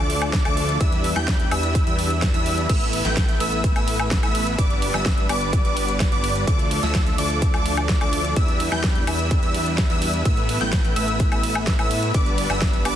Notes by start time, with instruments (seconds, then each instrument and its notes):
Already playing: analog synth bass D2, supersaw synth A4, digital synth lead D6
0.00 supersaw synth F3 A3 D4 D5
0.10 open hi-hat
0.22 closed hi-hat, high woodblock
0.33 kick, snare, closed hi-hat
0.45 analog synth bass D2, supersaw synth F3 A3 D4 A4 D5, digital synth lead D6, closed hi-hat, high woodblock
0.57 open hi-hat
0.69 closed hi-hat
0.81 analog synth bass E2, supersaw synth G3 D4 E4 E5, digital synth lead E6, kick, closed hi-hat
0.92 closed hi-hat
1.04 open hi-hat
1.16 analog synth bass E2, supersaw synth G3 D4 E4 B4 G5, digital synth lead G6, snare, closed hi-hat, high woodblock
1.28 kick, snare, closed hi-hat
1.40 closed hi-hat
1.51 analog synth bass E2, supersaw synth G3 D4 E4 B4 E5, digital synth lead E6, open hi-hat, high woodblock
1.63 closed hi-hat
1.75 kick, closed hi-hat
1.87 analog synth bass E2, supersaw synth G3 D4 E4 B4 E5, digital synth lead E6, closed hi-hat
1.99 open hi-hat
2.10 closed hi-hat
2.22 kick, snare, closed hi-hat
2.34 analog synth bass E2, supersaw synth G3 D4 E4 B4 E5, digital synth lead E6, closed hi-hat
2.46 open hi-hat
2.58 closed hi-hat
2.69 analog synth bass A1, supersaw synth A3 B3 E4 B4 E5, digital synth lead E6, kick, closed hi-hat, ride, crash
2.81 closed hi-hat
2.93 open hi-hat, ride
3.05 analog synth bass A1, supersaw synth A3 B3 E4 B4 G5, digital synth lead G6, snare, closed hi-hat
3.17 kick, snare, closed hi-hat, ride
3.29 closed hi-hat
3.40 analog synth bass A1, supersaw synth A3 B3 E4 B4 E5, digital synth lead E6, open hi-hat, ride
3.52 closed hi-hat
3.64 kick, closed hi-hat, ride
3.76 analog synth bass A1, supersaw synth A3 B3 E4 B4 E5, digital synth lead E6, closed hi-hat, high woodblock
3.88 open hi-hat, ride
4.00 closed hi-hat, high woodblock
4.11 kick, snare, closed hi-hat, ride
4.23 analog synth bass A1, supersaw synth A3 B3 E4 B4 E5, digital synth lead E6, closed hi-hat, high woodblock
4.35 open hi-hat, ride
4.47 closed hi-hat
4.58 analog synth bass G1, supersaw synth G3 D4 B4 D5, digital synth lead D6, kick, closed hi-hat, ride
4.70 closed hi-hat
4.82 open hi-hat, ride
4.94 analog synth bass G1, supersaw synth G3 B3 D4 B4 E5, digital synth lead E6, snare, closed hi-hat, high woodblock
5.06 kick, snare, closed hi-hat, ride
5.18 closed hi-hat
5.29 analog synth bass G1, supersaw synth G3 B3 D4 B4 D5, digital synth lead D6, open hi-hat, ride, high woodblock
5.41 closed hi-hat
5.53 kick, closed hi-hat, ride
5.65 analog synth bass G1, supersaw synth G3 B3 D4 B4 D5, digital synth lead D6, closed hi-hat
5.77 open hi-hat, ride
5.88 closed hi-hat
6.00 kick, snare, closed hi-hat, ride
6.12 analog synth bass G1, supersaw synth G3 B3 D4 B4 D5, digital synth lead D6, closed hi-hat
6.24 open hi-hat, ride
6.36 closed hi-hat
6.47 analog synth bass D2, supersaw synth F3 A3 D4 A4 D5, digital synth lead D6, kick, closed hi-hat, ride
6.59 closed hi-hat
6.71 open hi-hat, ride
6.83 analog synth bass D2, supersaw synth F3 A3 D4 A4 E5, digital synth lead E6, snare, closed hi-hat
6.95 kick, snare, closed hi-hat, ride
7.07 closed hi-hat
7.18 analog synth bass D2, supersaw synth F3 A3 D4 A4 D5, digital synth lead D6, open hi-hat, ride
7.30 closed hi-hat
7.42 kick, closed hi-hat, ride
7.54 analog synth bass D2, supersaw synth F3 A3 D4 A4 D5, digital synth lead D6, closed hi-hat, high woodblock
7.66 open hi-hat, ride
7.77 closed hi-hat, high woodblock
7.89 kick, snare, closed hi-hat, ride
8.01 analog synth bass D2, supersaw synth F3 A3 D4 A4 D5, digital synth lead D6, closed hi-hat, high woodblock
8.13 open hi-hat, ride
8.25 closed hi-hat
8.36 analog synth bass E2, supersaw synth G3 D4 E4 E5, digital synth lead E6, kick, closed hi-hat, ride
8.48 closed hi-hat
8.60 open hi-hat, ride
8.72 analog synth bass E2, supersaw synth G3 D4 E4 B4 G5, digital synth lead G6, snare, closed hi-hat, high woodblock
8.84 kick, snare, closed hi-hat, ride
8.95 closed hi-hat
9.07 analog synth bass E2, supersaw synth G3 D4 E4 B4 E5, digital synth lead E6, open hi-hat, ride, high woodblock
9.19 closed hi-hat
9.31 kick, closed hi-hat, ride
9.43 analog synth bass E2, supersaw synth G3 D4 E4 B4 E5, digital synth lead E6, closed hi-hat
9.54 open hi-hat, ride
9.66 closed hi-hat
9.78 kick, snare, closed hi-hat, ride
9.90 analog synth bass E2, supersaw synth G3 D4 E4 B4 E5, digital synth lead E6, closed hi-hat
10.02 open hi-hat, ride
10.14 closed hi-hat
10.25 analog synth bass A1, supersaw synth A3 B3 E4 B4 E5, digital synth lead E6, kick, closed hi-hat, ride
10.37 closed hi-hat
10.49 open hi-hat, ride
10.61 analog synth bass A1, supersaw synth A3 B3 E4 B4 G5, digital synth lead G6, snare, closed hi-hat
10.73 kick, snare, closed hi-hat, ride
10.85 closed hi-hat
10.96 analog synth bass A1, supersaw synth A3 B3 E4 B4 E5, digital synth lead E6, open hi-hat, ride
11.08 closed hi-hat
11.20 kick, closed hi-hat, ride
11.32 analog synth bass A1, supersaw synth A3 B3 E4 B4 E5, digital synth lead E6, closed hi-hat, high woodblock
11.43 open hi-hat, ride
11.55 high woodblock
11.67 kick, snare, closed hi-hat, ride
11.79 analog synth bass A2, supersaw synth A3 B3 E4 B4 E5, digital synth lead E6, closed hi-hat, high woodblock
11.91 open hi-hat, ride
12.03 closed hi-hat
12.14 analog synth bass G1, supersaw synth G3 B3 D4 B4 D5, digital synth lead D6, kick, closed hi-hat, ride
12.26 closed hi-hat
12.38 open hi-hat, ride
12.50 analog synth bass G1, supersaw synth G3 B3 D4 B4 E5, digital synth lead E6, snare, closed hi-hat, high woodblock
12.62 kick, snare, closed hi-hat, ride
12.73 closed hi-hat
12.85 analog synth bass G1, supersaw synth G3 B3 D4 B4 D5, digital synth lead D6, open hi-hat, ride, high woodblock